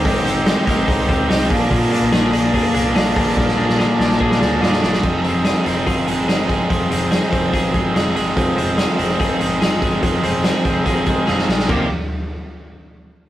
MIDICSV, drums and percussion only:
0, 0, Header, 1, 2, 480
1, 0, Start_track
1, 0, Tempo, 415800
1, 54, Time_signature, 4, 2, 24, 8
1, 15344, End_track
2, 0, Start_track
2, 0, Title_t, "Drums"
2, 58, Note_on_c, 9, 44, 61
2, 58, Note_on_c, 9, 46, 84
2, 60, Note_on_c, 9, 36, 111
2, 173, Note_off_c, 9, 44, 0
2, 174, Note_off_c, 9, 46, 0
2, 175, Note_off_c, 9, 36, 0
2, 299, Note_on_c, 9, 46, 74
2, 300, Note_on_c, 9, 44, 68
2, 415, Note_off_c, 9, 44, 0
2, 415, Note_off_c, 9, 46, 0
2, 536, Note_on_c, 9, 38, 122
2, 536, Note_on_c, 9, 46, 110
2, 538, Note_on_c, 9, 44, 65
2, 651, Note_off_c, 9, 38, 0
2, 652, Note_off_c, 9, 46, 0
2, 654, Note_off_c, 9, 44, 0
2, 778, Note_on_c, 9, 36, 98
2, 778, Note_on_c, 9, 46, 79
2, 779, Note_on_c, 9, 44, 73
2, 893, Note_off_c, 9, 36, 0
2, 893, Note_off_c, 9, 46, 0
2, 894, Note_off_c, 9, 44, 0
2, 1017, Note_on_c, 9, 36, 101
2, 1019, Note_on_c, 9, 44, 63
2, 1021, Note_on_c, 9, 46, 84
2, 1132, Note_off_c, 9, 36, 0
2, 1135, Note_off_c, 9, 44, 0
2, 1137, Note_off_c, 9, 46, 0
2, 1256, Note_on_c, 9, 46, 63
2, 1257, Note_on_c, 9, 36, 99
2, 1261, Note_on_c, 9, 44, 62
2, 1371, Note_off_c, 9, 46, 0
2, 1373, Note_off_c, 9, 36, 0
2, 1376, Note_off_c, 9, 44, 0
2, 1500, Note_on_c, 9, 44, 69
2, 1507, Note_on_c, 9, 38, 119
2, 1507, Note_on_c, 9, 46, 106
2, 1616, Note_off_c, 9, 44, 0
2, 1622, Note_off_c, 9, 38, 0
2, 1622, Note_off_c, 9, 46, 0
2, 1736, Note_on_c, 9, 36, 95
2, 1736, Note_on_c, 9, 44, 64
2, 1736, Note_on_c, 9, 46, 71
2, 1851, Note_off_c, 9, 44, 0
2, 1852, Note_off_c, 9, 36, 0
2, 1852, Note_off_c, 9, 46, 0
2, 1974, Note_on_c, 9, 44, 63
2, 1975, Note_on_c, 9, 36, 100
2, 1975, Note_on_c, 9, 46, 82
2, 2089, Note_off_c, 9, 44, 0
2, 2090, Note_off_c, 9, 46, 0
2, 2091, Note_off_c, 9, 36, 0
2, 2217, Note_on_c, 9, 46, 78
2, 2218, Note_on_c, 9, 44, 63
2, 2333, Note_off_c, 9, 44, 0
2, 2333, Note_off_c, 9, 46, 0
2, 2453, Note_on_c, 9, 38, 113
2, 2454, Note_on_c, 9, 46, 112
2, 2456, Note_on_c, 9, 44, 62
2, 2569, Note_off_c, 9, 38, 0
2, 2569, Note_off_c, 9, 46, 0
2, 2571, Note_off_c, 9, 44, 0
2, 2692, Note_on_c, 9, 46, 82
2, 2693, Note_on_c, 9, 44, 70
2, 2808, Note_off_c, 9, 46, 0
2, 2809, Note_off_c, 9, 44, 0
2, 2931, Note_on_c, 9, 36, 93
2, 2933, Note_on_c, 9, 44, 71
2, 2935, Note_on_c, 9, 46, 89
2, 3046, Note_off_c, 9, 36, 0
2, 3049, Note_off_c, 9, 44, 0
2, 3051, Note_off_c, 9, 46, 0
2, 3167, Note_on_c, 9, 46, 68
2, 3172, Note_on_c, 9, 44, 71
2, 3283, Note_off_c, 9, 46, 0
2, 3288, Note_off_c, 9, 44, 0
2, 3412, Note_on_c, 9, 44, 66
2, 3419, Note_on_c, 9, 38, 126
2, 3419, Note_on_c, 9, 46, 97
2, 3528, Note_off_c, 9, 44, 0
2, 3534, Note_off_c, 9, 38, 0
2, 3534, Note_off_c, 9, 46, 0
2, 3653, Note_on_c, 9, 36, 98
2, 3653, Note_on_c, 9, 44, 70
2, 3654, Note_on_c, 9, 46, 69
2, 3768, Note_off_c, 9, 36, 0
2, 3769, Note_off_c, 9, 44, 0
2, 3769, Note_off_c, 9, 46, 0
2, 3891, Note_on_c, 9, 36, 98
2, 3894, Note_on_c, 9, 38, 56
2, 4007, Note_off_c, 9, 36, 0
2, 4009, Note_off_c, 9, 38, 0
2, 4020, Note_on_c, 9, 38, 58
2, 4135, Note_off_c, 9, 38, 0
2, 4259, Note_on_c, 9, 38, 63
2, 4374, Note_off_c, 9, 38, 0
2, 4379, Note_on_c, 9, 38, 77
2, 4495, Note_off_c, 9, 38, 0
2, 4620, Note_on_c, 9, 38, 76
2, 4736, Note_off_c, 9, 38, 0
2, 4739, Note_on_c, 9, 38, 72
2, 4852, Note_on_c, 9, 36, 92
2, 4854, Note_off_c, 9, 38, 0
2, 4968, Note_off_c, 9, 36, 0
2, 4979, Note_on_c, 9, 38, 81
2, 5095, Note_off_c, 9, 38, 0
2, 5097, Note_on_c, 9, 38, 99
2, 5212, Note_off_c, 9, 38, 0
2, 5341, Note_on_c, 9, 38, 107
2, 5453, Note_off_c, 9, 38, 0
2, 5453, Note_on_c, 9, 38, 85
2, 5569, Note_off_c, 9, 38, 0
2, 5573, Note_on_c, 9, 38, 95
2, 5689, Note_off_c, 9, 38, 0
2, 5695, Note_on_c, 9, 38, 91
2, 5809, Note_on_c, 9, 49, 83
2, 5811, Note_off_c, 9, 38, 0
2, 5812, Note_on_c, 9, 36, 101
2, 5924, Note_off_c, 9, 49, 0
2, 5927, Note_off_c, 9, 36, 0
2, 6052, Note_on_c, 9, 42, 70
2, 6167, Note_off_c, 9, 42, 0
2, 6289, Note_on_c, 9, 38, 124
2, 6289, Note_on_c, 9, 42, 99
2, 6404, Note_off_c, 9, 38, 0
2, 6405, Note_off_c, 9, 42, 0
2, 6535, Note_on_c, 9, 42, 80
2, 6543, Note_on_c, 9, 38, 33
2, 6650, Note_off_c, 9, 42, 0
2, 6658, Note_off_c, 9, 38, 0
2, 6775, Note_on_c, 9, 36, 90
2, 6779, Note_on_c, 9, 42, 79
2, 6890, Note_off_c, 9, 36, 0
2, 6894, Note_off_c, 9, 42, 0
2, 7014, Note_on_c, 9, 42, 69
2, 7129, Note_off_c, 9, 42, 0
2, 7262, Note_on_c, 9, 38, 109
2, 7262, Note_on_c, 9, 42, 89
2, 7378, Note_off_c, 9, 38, 0
2, 7378, Note_off_c, 9, 42, 0
2, 7498, Note_on_c, 9, 36, 80
2, 7500, Note_on_c, 9, 42, 60
2, 7613, Note_off_c, 9, 36, 0
2, 7615, Note_off_c, 9, 42, 0
2, 7737, Note_on_c, 9, 36, 102
2, 7740, Note_on_c, 9, 42, 74
2, 7853, Note_off_c, 9, 36, 0
2, 7855, Note_off_c, 9, 42, 0
2, 7982, Note_on_c, 9, 42, 65
2, 8098, Note_off_c, 9, 42, 0
2, 8216, Note_on_c, 9, 38, 104
2, 8217, Note_on_c, 9, 42, 92
2, 8332, Note_off_c, 9, 38, 0
2, 8332, Note_off_c, 9, 42, 0
2, 8459, Note_on_c, 9, 36, 94
2, 8461, Note_on_c, 9, 42, 76
2, 8574, Note_off_c, 9, 36, 0
2, 8576, Note_off_c, 9, 42, 0
2, 8699, Note_on_c, 9, 36, 84
2, 8703, Note_on_c, 9, 42, 84
2, 8814, Note_off_c, 9, 36, 0
2, 8818, Note_off_c, 9, 42, 0
2, 8936, Note_on_c, 9, 42, 62
2, 8939, Note_on_c, 9, 36, 91
2, 9052, Note_off_c, 9, 42, 0
2, 9054, Note_off_c, 9, 36, 0
2, 9190, Note_on_c, 9, 38, 109
2, 9190, Note_on_c, 9, 42, 87
2, 9305, Note_off_c, 9, 38, 0
2, 9305, Note_off_c, 9, 42, 0
2, 9424, Note_on_c, 9, 42, 69
2, 9540, Note_off_c, 9, 42, 0
2, 9661, Note_on_c, 9, 36, 102
2, 9662, Note_on_c, 9, 42, 74
2, 9776, Note_off_c, 9, 36, 0
2, 9778, Note_off_c, 9, 42, 0
2, 9905, Note_on_c, 9, 42, 76
2, 10020, Note_off_c, 9, 42, 0
2, 10136, Note_on_c, 9, 38, 115
2, 10137, Note_on_c, 9, 42, 100
2, 10252, Note_off_c, 9, 38, 0
2, 10252, Note_off_c, 9, 42, 0
2, 10379, Note_on_c, 9, 42, 76
2, 10495, Note_off_c, 9, 42, 0
2, 10619, Note_on_c, 9, 36, 94
2, 10624, Note_on_c, 9, 42, 80
2, 10734, Note_off_c, 9, 36, 0
2, 10739, Note_off_c, 9, 42, 0
2, 10859, Note_on_c, 9, 42, 62
2, 10975, Note_off_c, 9, 42, 0
2, 11107, Note_on_c, 9, 38, 106
2, 11107, Note_on_c, 9, 42, 95
2, 11222, Note_off_c, 9, 38, 0
2, 11222, Note_off_c, 9, 42, 0
2, 11338, Note_on_c, 9, 36, 90
2, 11340, Note_on_c, 9, 42, 63
2, 11454, Note_off_c, 9, 36, 0
2, 11455, Note_off_c, 9, 42, 0
2, 11577, Note_on_c, 9, 36, 101
2, 11577, Note_on_c, 9, 42, 80
2, 11692, Note_off_c, 9, 42, 0
2, 11693, Note_off_c, 9, 36, 0
2, 11813, Note_on_c, 9, 42, 70
2, 11929, Note_off_c, 9, 42, 0
2, 12053, Note_on_c, 9, 38, 119
2, 12054, Note_on_c, 9, 42, 99
2, 12169, Note_off_c, 9, 38, 0
2, 12169, Note_off_c, 9, 42, 0
2, 12296, Note_on_c, 9, 42, 85
2, 12297, Note_on_c, 9, 36, 99
2, 12412, Note_off_c, 9, 36, 0
2, 12412, Note_off_c, 9, 42, 0
2, 12536, Note_on_c, 9, 36, 86
2, 12539, Note_on_c, 9, 42, 77
2, 12652, Note_off_c, 9, 36, 0
2, 12654, Note_off_c, 9, 42, 0
2, 12772, Note_on_c, 9, 42, 69
2, 12777, Note_on_c, 9, 36, 90
2, 12888, Note_off_c, 9, 42, 0
2, 12892, Note_off_c, 9, 36, 0
2, 13020, Note_on_c, 9, 38, 59
2, 13135, Note_off_c, 9, 38, 0
2, 13146, Note_on_c, 9, 38, 61
2, 13260, Note_off_c, 9, 38, 0
2, 13260, Note_on_c, 9, 38, 90
2, 13376, Note_off_c, 9, 38, 0
2, 13380, Note_on_c, 9, 38, 88
2, 13495, Note_off_c, 9, 38, 0
2, 13498, Note_on_c, 9, 36, 100
2, 13498, Note_on_c, 9, 43, 91
2, 13498, Note_on_c, 9, 57, 85
2, 13613, Note_off_c, 9, 36, 0
2, 13614, Note_off_c, 9, 43, 0
2, 13614, Note_off_c, 9, 57, 0
2, 15344, End_track
0, 0, End_of_file